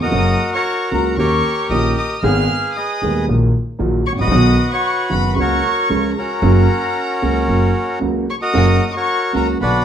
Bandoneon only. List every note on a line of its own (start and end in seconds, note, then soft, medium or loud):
0.02 0.54 F#4 medium
0.02 0.54 A#4 medium
0.02 0.50 D#5 medium
0.54 1.16 F#4 medium
0.54 0.93 A#4 medium
0.54 0.90 C#5 medium
0.94 1.17 A#4 medium
1.19 2.20 G4 medium
1.19 2.20 A#4 medium
1.19 1.67 C#5 medium
1.70 1.96 D#5 medium
1.98 2.24 D#5 medium
2.23 2.77 G#4 medium
2.23 2.76 B4 medium
2.23 2.77 F5 medium
2.77 3.26 G#4 medium
2.77 3.26 B4 medium
2.77 3.25 D#5 medium
4.07 4.13 C#5 medium
4.21 4.72 F#4 medium
4.21 5.11 B4 medium
4.21 4.69 D#5 loud
4.73 5.35 F#4 medium
4.73 5.13 C#5 medium
5.13 5.40 B4 medium
5.40 5.89 F#4 medium
5.40 6.15 A#4 medium
5.40 6.14 C#5 medium
6.18 7.99 C#4 medium
6.18 7.99 F#4 medium
6.18 7.99 A#4 medium
8.30 8.36 C#5 medium
8.42 8.95 F#4 medium
8.42 8.95 A#4 medium
8.42 8.85 D#5 medium
8.88 8.95 D#5 medium
8.96 9.58 F#4 medium
8.96 9.35 A#4 medium
8.96 9.33 C#5 medium
9.36 9.48 A#4 medium
9.62 9.85 D4 medium
9.62 9.85 F#4 medium
9.62 9.85 B4 medium